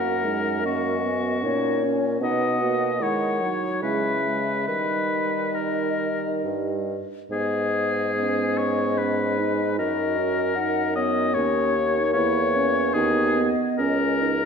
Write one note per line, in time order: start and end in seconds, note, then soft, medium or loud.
0.00 1.43 F#2 soft
0.00 0.25 A#3 soft
0.00 0.24 F#4 soft
0.00 0.64 A#4 medium
0.00 0.66 F#5 soft
0.24 0.66 G#3 soft
0.24 0.67 D#4 soft
0.64 1.06 A#3 soft
0.64 1.45 C#4 soft
0.64 1.81 F#4 medium
0.64 1.46 D#5 soft
1.04 1.44 B3 soft
1.43 2.20 A#2 soft
1.43 1.82 C#4 soft
1.43 1.85 D#4 soft
1.43 2.21 C#5 soft
1.83 2.23 C#4 soft
1.83 2.21 C#4 soft
2.21 3.02 B2 soft
2.21 2.63 B3 soft
2.21 2.61 D#4 soft
2.21 3.04 D#5 medium
2.21 2.99 F#5 soft
2.62 3.02 A#3 soft
2.62 3.03 F#4 soft
3.00 3.55 D#3 soft
3.00 3.42 G#3 soft
3.00 3.42 E4 soft
3.00 3.82 C#5 medium
3.00 3.53 F#5 soft
3.41 3.84 F#3 soft
3.41 3.82 D#4 soft
3.82 4.65 C#3 soft
3.82 4.13 G#3 soft
3.82 4.38 E4 soft
3.82 4.67 B4 soft
3.82 4.70 E5 soft
4.26 4.70 G#3 soft
4.68 6.42 D#3 soft
4.68 7.00 G3 soft
4.68 6.85 D#4 soft
4.68 5.56 B4 medium
4.68 6.99 D#5 soft
5.55 6.44 A#4 soft
6.45 6.98 G2 soft
7.30 9.80 G#2 soft
7.30 8.12 B3 soft
7.30 8.59 G#4 medium
7.30 8.12 D#5 soft
8.15 9.00 B3 soft
8.15 9.02 C#4 soft
8.15 9.76 D#5 soft
8.58 8.99 C#5 medium
8.98 9.42 B3 soft
8.98 9.39 C#4 soft
8.98 9.78 B4 soft
9.39 9.77 D#4 soft
9.39 9.80 D#4 soft
9.78 11.35 F#2 soft
9.78 10.19 D#4 soft
9.78 10.56 F#4 soft
9.78 10.94 A#4 medium
9.78 10.57 D#5 soft
10.17 10.58 C#4 soft
10.56 10.98 D#4 soft
10.56 11.34 D#4 soft
10.56 10.97 F#5 soft
10.95 11.37 B3 soft
10.95 12.95 C#5 soft
10.95 11.35 D#5 medium
11.34 12.16 D#2 soft
11.34 12.96 A#3 medium
11.34 11.77 C#4 soft
11.34 12.12 C#5 medium
11.75 12.15 D#4 soft
12.13 12.94 E2 medium
12.13 12.54 E4 medium
12.13 12.95 C#5 medium
12.55 12.97 C#4 soft
12.94 13.49 D#2 medium
12.94 13.50 B3 medium
12.94 13.39 D#4 soft
12.94 13.50 G#4 medium
12.94 14.37 D#5 medium
13.38 13.81 B3 soft
13.78 14.45 C#2 medium
13.78 14.23 C#4 medium
13.78 14.38 C#4 soft
13.78 14.45 A#4 medium
14.21 14.45 D#4 soft